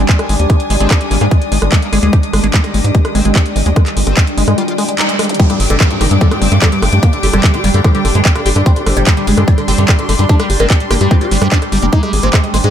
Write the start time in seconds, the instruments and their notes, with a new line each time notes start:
Already playing: string section D#3 G#5 C6 D#6, ambient pad G3 D4
0.09 acid bass G#3, kick, clap, closed hi-hat
0.19 cross-stick, closed hi-hat
0.29 analog synth bass G#1, acid bass G#3, open hi-hat
0.40 analog synth bass D#2, closed hi-hat
0.50 acid bass G#3, kick, cross-stick, closed hi-hat
0.60 closed hi-hat
0.70 analog synth bass G#1, acid bass G#3, open hi-hat
0.80 analog synth bass G#1, acid bass G#3, wobble bass C4, closed hi-hat
0.91 acid bass G3, kick, cross-stick, clap, closed hi-hat
1.01 closed hi-hat
1.11 analog synth bass G#1, acid bass G#3, wobble bass A#3, open hi-hat
1.21 analog synth bass G#2, acid bass G#3, wobble bass A#3, cross-stick, closed hi-hat
1.31 acid bass G#3, kick, closed hi-hat
1.42 closed hi-hat
1.52 analog synth bass G#1, acid bass G#3, open hi-hat
1.62 analog synth bass G#1, cross-stick, closed hi-hat
1.72 acid bass G#3, wobble bass A#3, kick, clap, closed hi-hat
1.82 wobble bass A#3, closed hi-hat
1.93 analog synth bass G#1, acid bass G#3, cross-stick, open hi-hat
2.03 analog synth bass D#2, acid bass G#3, closed hi-hat
2.13 acid bass G3, kick, closed hi-hat
2.23 closed hi-hat
2.33 analog synth bass G#1, acid bass G#3, string section G5, cross-stick, open hi-hat
2.44 analog synth bass G#1, acid bass G#3, closed hi-hat
2.54 acid bass G#3, kick, clap, closed hi-hat
2.64 cross-stick, closed hi-hat
2.74 analog synth bass G#1, acid bass G#3, open hi-hat
2.84 analog synth bass G#2, closed hi-hat
2.95 acid bass G#3, kick, closed hi-hat
3.05 cross-stick, closed hi-hat
3.15 analog synth bass G#1, acid bass G#3, wobble bass C4, open hi-hat
3.25 analog synth bass G#1, acid bass G#3, closed hi-hat
3.35 acid bass G3, kick, cross-stick, clap, closed hi-hat
3.46 closed hi-hat
3.56 analog synth bass G#1, acid bass G#3, open hi-hat
3.66 analog synth bass D#2, acid bass G#3, closed hi-hat
3.76 acid bass G#3, kick, cross-stick, closed hi-hat
3.86 clap, closed hi-hat
3.97 analog synth bass G#1, acid bass G#3, open hi-hat
4.07 analog synth bass G#1, wobble bass C4, cross-stick, closed hi-hat
4.17 acid bass G#3, kick, clap, closed hi-hat
4.27 closed hi-hat
4.37 analog synth bass G#1, acid bass G#3, open hi-hat
4.48 analog synth bass G#2, acid bass G#3, cross-stick, closed hi-hat
4.58 acid bass G3, wobble bass F4, closed hi-hat
4.68 wobble bass F4, closed hi-hat
4.78 acid bass G#3, cross-stick, open hi-hat
4.88 acid bass G#3, closed hi-hat
4.99 acid bass D#4, clap, closed hi-hat
5.09 acid bass G#3, closed hi-hat
5.19 acid bass G#3, cross-stick, closed hi-hat, open hi-hat
5.24 closed hi-hat
5.29 closed hi-hat, zap
5.34 closed hi-hat
5.39 acid bass G3, oud G3, ambient pad G3 D4, string section D4, kick, closed hi-hat, downlifter
5.50 oud G2, acid bass G3, cross-stick, closed hi-hat
5.58 analog synth bass G1, oud G2, string section G4 D6, open hi-hat
5.70 analog synth bass G1, oud D3, acid bass G#3, closed hi-hat
5.80 oud G2, kick, cross-stick, clap, closed hi-hat
5.91 oud G2, closed hi-hat
6.01 analog synth bass G1, oud D#3, acid bass G4, cross-stick, open hi-hat
6.11 analog synth bass G2, oud G2, acid bass G3, closed hi-hat
6.21 oud D3, kick, closed hi-hat
6.31 oud G2, acid bass G4, cross-stick, closed hi-hat
6.42 analog synth bass G1, oud G2, acid bass G3, wobble bass C4, open hi-hat
6.52 analog synth bass G2, oud G2, acid bass G3, cross-stick, closed hi-hat
6.62 oud D3, acid bass G3, kick, clap, closed hi-hat
6.72 oud G2, acid bass G3, closed hi-hat
6.82 analog synth bass G1, oud G2, cross-stick, open hi-hat
6.93 analog synth bass G2, oud G2, acid bass G#3, closed hi-hat
7.03 oud A#3, kick, cross-stick, closed hi-hat
7.13 oud D3, closed hi-hat
7.23 analog synth bass G1, oud D3, acid bass G4, open hi-hat
7.33 analog synth bass G1, oud G3, acid bass G3, wobble bass C4, cross-stick, closed hi-hat
7.44 oud D3, kick, clap, closed hi-hat
7.54 oud D3, acid bass G4, cross-stick, closed hi-hat
7.64 analog synth bass G1, acid bass G3, oud G3, wobble bass A#3, open hi-hat
7.74 analog synth bass G2, oud D3, acid bass G3, wobble bass A#3, closed hi-hat
7.84 oud F3, acid bass G3, kick, cross-stick, closed hi-hat
7.95 oud D3, acid bass G3, closed hi-hat
8.05 analog synth bass G1, oud D3, cross-stick, open hi-hat
8.15 analog synth bass G2, oud D3, acid bass G#3, closed hi-hat
8.25 oud G3, wobble bass A#3, kick, clap, closed hi-hat
8.35 oud D3, wobble bass A#3, cross-stick, closed hi-hat
8.46 analog synth bass G1, oud D3, acid bass G4, open hi-hat
8.56 analog synth bass G2, oud D3, acid bass G3, cross-stick, closed hi-hat
8.66 oud C4, kick, closed hi-hat
8.76 oud D3, acid bass G4, closed hi-hat
8.86 analog synth bass G1, oud D3, acid bass G3, cross-stick, open hi-hat
8.97 analog synth bass G1, oud G3, acid bass G3, closed hi-hat
9.04 oud D3, acid bass G3, string section C6, kick, cross-stick, clap, closed hi-hat
9.17 oud D3, acid bass G3, closed hi-hat
9.27 analog synth bass G1, oud G#3, open hi-hat
9.38 analog synth bass G2, oud D3, acid bass G#3, cross-stick, closed hi-hat
9.48 oud G3, kick, closed hi-hat
9.58 oud D3, cross-stick, closed hi-hat
9.68 analog synth bass G1, oud D3, wobble bass C4, acid bass G4, open hi-hat
9.78 analog synth bass G2, oud D3, acid bass G3, closed hi-hat
9.88 oud G3, kick, cross-stick, clap, closed hi-hat
9.99 oud D3, acid bass G4, closed hi-hat
10.09 analog synth bass G1, oud D3, acid bass G3, cross-stick, open hi-hat
10.19 analog synth bass G2, oud D3, acid bass G3, closed hi-hat
10.29 acid bass G3, oud D4, kick, closed hi-hat
10.40 acid bass G3, oud G3, cross-stick, closed hi-hat
10.50 analog synth bass G1, oud G3, open hi-hat
10.60 analog synth bass G1, acid bass G#3, oud A#3, wobble bass C4, cross-stick, closed hi-hat
10.70 oud G3, kick, clap, closed hi-hat
10.80 oud G3, closed hi-hat
10.91 analog synth bass G1, oud A#3, acid bass G4, cross-stick, open hi-hat
11.01 analog synth bass G2, oud G3, acid bass G3, closed hi-hat
11.11 oud C4, wobble bass F4, kick, cross-stick, closed hi-hat
11.21 oud G3, wobble bass F4, acid bass G4, closed hi-hat
11.31 analog synth bass G1, oud G3, acid bass G3, open hi-hat
11.42 analog synth bass G2, oud G3, acid bass G3, cross-stick, closed hi-hat
11.52 acid bass D4, oud D4, kick, clap, closed hi-hat
11.62 oud G3, cross-stick, closed hi-hat
11.72 analog synth bass G1, oud G3, acid bass G3, open hi-hat
11.82 analog synth bass F1, oud G3, acid bass A#3, closed hi-hat
11.93 string section D#3, acid bass G#3, oud D#4, kick, closed hi-hat
12.03 acid bass G3, oud G#3, cross-stick, closed hi-hat
12.13 analog synth bass G#1, oud G#3, open hi-hat
12.20 analog synth bass G#1, acid bass A#3, oud C4, string section G#5 D#6, closed hi-hat
12.33 oud G#3, kick, cross-stick, clap, closed hi-hat
12.44 oud G#3, closed hi-hat
12.54 analog synth bass G#1, acid bass G#3, oud C4, cross-stick, open hi-hat
12.64 analog synth bass G#2, oud G#3, acid bass G#3, closed hi-hat